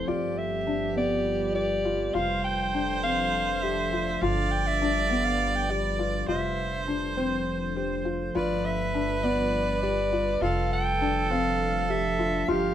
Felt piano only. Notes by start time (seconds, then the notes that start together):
0.08 F4
0.67 D4
0.96 B3
1.55 G4
1.85 F4
2.15 F4
2.74 D4
3.04 C4
3.63 G4
3.93 F4
4.23 F4
4.82 D4
5.11 B3
5.70 G4
5.99 F4
6.28 F4
6.88 D4
7.17 C4
7.76 G4
8.05 F4
8.35 F4
8.94 D4
9.24 B3
9.83 G4
10.13 F4
10.42 F4
11.01 D4
11.31 C4
11.90 G4
12.19 F4
12.48 F4